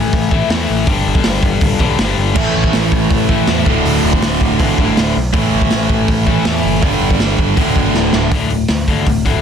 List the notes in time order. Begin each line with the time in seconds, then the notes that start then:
Already playing: A2 E3 A3
0.13 A1, kick, open hi-hat
0.31 A2 E3 A3, kick
0.50 E2 A2 E3 A3, snare, open hi-hat
0.70 A1
0.86 G1 G2 D3 G3, kick, open hi-hat
1.07 G1
1.15 kick
1.24 G1, snare, open hi-hat
1.43 G1, kick
1.61 D1, kick, open hi-hat
1.79 B1 G2 D3 G3, kick
1.99 G1 G2 D3 G3, snare, open hi-hat
2.18 G1
2.35 A1 A2 E3 A3, kick, crash
2.55 A1
2.64 kick
2.73 A1, snare, open hi-hat
2.92 A1, kick
3.10 A1, kick, open hi-hat
3.29 A2 E3 A3, kick
3.47 E2 A2 E3 A3, snare, open hi-hat
3.65 D1 D2 A2 D3, kick
3.84 D1, open hi-hat
4.03 D1
4.13 kick
4.22 D1, snare, open hi-hat
4.41 D1, kick
4.59 A1 D2 A2 D3, kick, open hi-hat
4.78 G1 D2 A2 D3, kick
4.97 D1, snare, open hi-hat
5.17 B1
5.33 A1 A2 E3 A3, kick, open hi-hat
5.54 A1
5.62 kick
5.70 A1, snare, open hi-hat
5.90 A1, kick
6.08 A1, kick, open hi-hat
6.26 A2 E3 A3, kick
6.45 E2 A2 E3 A3, snare, open hi-hat
6.64 F#1
6.82 G1 G2 D3 G3, kick, open hi-hat
7.01 G1
7.10 kick
7.19 G1, snare, open hi-hat
7.39 G1, kick
7.57 D1 D2 A2 D3, kick, open hi-hat
7.76 G1, kick
7.94 D1, snare
8.13 D1, snare
8.31 D1 D2 A2 D3, kick, open hi-hat
8.50 D2 A2, open hi-hat
8.68 D2 A2, snare, open hi-hat
8.88 D2 A2 D3, kick, open hi-hat
9.06 D1 D2 A2, kick, open hi-hat
9.25 D2 A2 D3, kick, open hi-hat